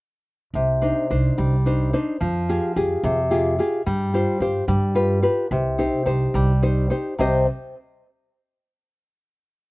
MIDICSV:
0, 0, Header, 1, 3, 480
1, 0, Start_track
1, 0, Key_signature, -3, "minor"
1, 0, Tempo, 555042
1, 466, Time_signature, 6, 3, 24, 8
1, 8390, End_track
2, 0, Start_track
2, 0, Title_t, "Nylon-string guitar"
2, 0, Program_c, 0, 24
2, 477, Note_on_c, 0, 48, 44
2, 704, Note_on_c, 0, 62, 35
2, 709, Note_on_c, 0, 63, 35
2, 712, Note_on_c, 0, 72, 42
2, 942, Note_off_c, 0, 48, 0
2, 945, Note_off_c, 0, 62, 0
2, 946, Note_off_c, 0, 63, 0
2, 950, Note_off_c, 0, 72, 0
2, 955, Note_on_c, 0, 62, 36
2, 957, Note_on_c, 0, 63, 33
2, 960, Note_on_c, 0, 72, 43
2, 1192, Note_on_c, 0, 55, 48
2, 1340, Note_off_c, 0, 62, 0
2, 1340, Note_off_c, 0, 63, 0
2, 1343, Note_off_c, 0, 72, 0
2, 1432, Note_on_c, 0, 62, 37
2, 1438, Note_on_c, 0, 63, 33
2, 1444, Note_on_c, 0, 72, 41
2, 1659, Note_off_c, 0, 55, 0
2, 1660, Note_off_c, 0, 62, 0
2, 1662, Note_off_c, 0, 63, 0
2, 1666, Note_off_c, 0, 72, 0
2, 1670, Note_on_c, 0, 62, 37
2, 1673, Note_on_c, 0, 63, 36
2, 1677, Note_on_c, 0, 72, 40
2, 1862, Note_off_c, 0, 62, 0
2, 1863, Note_off_c, 0, 63, 0
2, 1866, Note_off_c, 0, 72, 0
2, 1907, Note_on_c, 0, 53, 51
2, 2155, Note_on_c, 0, 65, 41
2, 2156, Note_on_c, 0, 67, 37
2, 2159, Note_on_c, 0, 68, 45
2, 2373, Note_off_c, 0, 53, 0
2, 2376, Note_off_c, 0, 65, 0
2, 2381, Note_off_c, 0, 67, 0
2, 2383, Note_off_c, 0, 68, 0
2, 2386, Note_on_c, 0, 65, 36
2, 2391, Note_on_c, 0, 67, 34
2, 2395, Note_on_c, 0, 68, 44
2, 2630, Note_on_c, 0, 48, 53
2, 2770, Note_off_c, 0, 65, 0
2, 2774, Note_off_c, 0, 67, 0
2, 2775, Note_off_c, 0, 68, 0
2, 2861, Note_on_c, 0, 65, 46
2, 2866, Note_on_c, 0, 67, 43
2, 2868, Note_on_c, 0, 68, 42
2, 3092, Note_off_c, 0, 65, 0
2, 3093, Note_off_c, 0, 48, 0
2, 3098, Note_off_c, 0, 67, 0
2, 3103, Note_off_c, 0, 68, 0
2, 3103, Note_on_c, 0, 65, 36
2, 3109, Note_on_c, 0, 67, 34
2, 3113, Note_on_c, 0, 68, 39
2, 3294, Note_off_c, 0, 65, 0
2, 3298, Note_off_c, 0, 67, 0
2, 3300, Note_off_c, 0, 68, 0
2, 3341, Note_on_c, 0, 55, 57
2, 3578, Note_on_c, 0, 65, 43
2, 3582, Note_on_c, 0, 67, 35
2, 3587, Note_on_c, 0, 72, 50
2, 3805, Note_off_c, 0, 55, 0
2, 3806, Note_off_c, 0, 65, 0
2, 3809, Note_off_c, 0, 67, 0
2, 3812, Note_off_c, 0, 72, 0
2, 3816, Note_on_c, 0, 65, 41
2, 3820, Note_on_c, 0, 67, 34
2, 3822, Note_on_c, 0, 72, 46
2, 4008, Note_off_c, 0, 65, 0
2, 4009, Note_off_c, 0, 67, 0
2, 4011, Note_off_c, 0, 72, 0
2, 4048, Note_on_c, 0, 55, 56
2, 4281, Note_on_c, 0, 65, 45
2, 4281, Note_on_c, 0, 67, 36
2, 4286, Note_on_c, 0, 71, 53
2, 4508, Note_off_c, 0, 65, 0
2, 4511, Note_off_c, 0, 67, 0
2, 4516, Note_off_c, 0, 55, 0
2, 4516, Note_off_c, 0, 71, 0
2, 4518, Note_on_c, 0, 65, 33
2, 4522, Note_on_c, 0, 67, 36
2, 4526, Note_on_c, 0, 71, 40
2, 4716, Note_off_c, 0, 65, 0
2, 4718, Note_off_c, 0, 67, 0
2, 4721, Note_off_c, 0, 71, 0
2, 4771, Note_on_c, 0, 48, 50
2, 5002, Note_on_c, 0, 63, 41
2, 5005, Note_on_c, 0, 67, 39
2, 5009, Note_on_c, 0, 72, 47
2, 5227, Note_off_c, 0, 63, 0
2, 5231, Note_off_c, 0, 67, 0
2, 5237, Note_off_c, 0, 72, 0
2, 5237, Note_on_c, 0, 63, 35
2, 5239, Note_off_c, 0, 48, 0
2, 5242, Note_on_c, 0, 67, 39
2, 5248, Note_on_c, 0, 72, 44
2, 5493, Note_on_c, 0, 55, 55
2, 5632, Note_off_c, 0, 63, 0
2, 5634, Note_off_c, 0, 67, 0
2, 5638, Note_off_c, 0, 72, 0
2, 5730, Note_on_c, 0, 63, 43
2, 5734, Note_on_c, 0, 67, 37
2, 5736, Note_on_c, 0, 72, 44
2, 5958, Note_off_c, 0, 63, 0
2, 5961, Note_off_c, 0, 67, 0
2, 5961, Note_off_c, 0, 72, 0
2, 5964, Note_off_c, 0, 55, 0
2, 5966, Note_on_c, 0, 63, 36
2, 5973, Note_on_c, 0, 67, 31
2, 5977, Note_on_c, 0, 72, 39
2, 6166, Note_off_c, 0, 63, 0
2, 6168, Note_off_c, 0, 67, 0
2, 6168, Note_off_c, 0, 72, 0
2, 6214, Note_on_c, 0, 48, 45
2, 6219, Note_on_c, 0, 55, 37
2, 6224, Note_on_c, 0, 60, 49
2, 6226, Note_on_c, 0, 67, 41
2, 6229, Note_on_c, 0, 75, 43
2, 6232, Note_on_c, 0, 72, 56
2, 6442, Note_off_c, 0, 48, 0
2, 6446, Note_off_c, 0, 55, 0
2, 6447, Note_off_c, 0, 60, 0
2, 6449, Note_off_c, 0, 67, 0
2, 6450, Note_off_c, 0, 75, 0
2, 6452, Note_off_c, 0, 72, 0
2, 8390, End_track
3, 0, Start_track
3, 0, Title_t, "Upright bass"
3, 0, Program_c, 1, 32
3, 464, Note_on_c, 1, 36, 64
3, 779, Note_off_c, 1, 36, 0
3, 956, Note_on_c, 1, 36, 67
3, 1111, Note_off_c, 1, 36, 0
3, 1195, Note_on_c, 1, 36, 73
3, 1662, Note_off_c, 1, 36, 0
3, 1912, Note_on_c, 1, 41, 75
3, 2223, Note_off_c, 1, 41, 0
3, 2390, Note_on_c, 1, 41, 65
3, 2545, Note_off_c, 1, 41, 0
3, 2624, Note_on_c, 1, 41, 79
3, 3091, Note_off_c, 1, 41, 0
3, 3343, Note_on_c, 1, 43, 78
3, 3653, Note_off_c, 1, 43, 0
3, 3807, Note_on_c, 1, 43, 64
3, 3966, Note_off_c, 1, 43, 0
3, 4046, Note_on_c, 1, 43, 81
3, 4515, Note_off_c, 1, 43, 0
3, 4764, Note_on_c, 1, 36, 78
3, 5081, Note_off_c, 1, 36, 0
3, 5238, Note_on_c, 1, 36, 62
3, 5400, Note_off_c, 1, 36, 0
3, 5484, Note_on_c, 1, 36, 83
3, 5959, Note_off_c, 1, 36, 0
3, 6220, Note_on_c, 1, 36, 66
3, 6446, Note_off_c, 1, 36, 0
3, 8390, End_track
0, 0, End_of_file